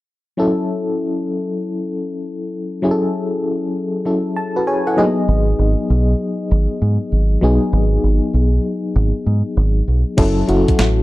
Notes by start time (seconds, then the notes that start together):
0.37 F#3 C#4 E4 A4
2.82 F#3 C#4 E4 G#4
2.91 A4
4.05 F#3 C#4 E4 A4
4.37 A5
4.56 F#4 B4
4.67 G#4 C#5 G#5
4.87 E4 A4 F#5
4.97 F#3 A#3 D#4 G#4 D#5
5.04 B3
5.28 G#1
5.59 G#1
5.90 B1
6.51 G#1
6.82 G#2
7.12 G#1
7.41 B1 F#3 B3 D#4 G#4
7.73 G#1
8.04 G#1
8.34 B1
8.96 G#1
9.26 G#2
9.57 G#1
9.88 B1
10.17 F#1 F#3 C#4 E4 A4, kick, closed hi-hat, crash
10.48 F#1 F#3 C#4 E4 F#4, closed hi-hat
10.68 kick, closed hi-hat
10.79 A1, snare, closed hi-hat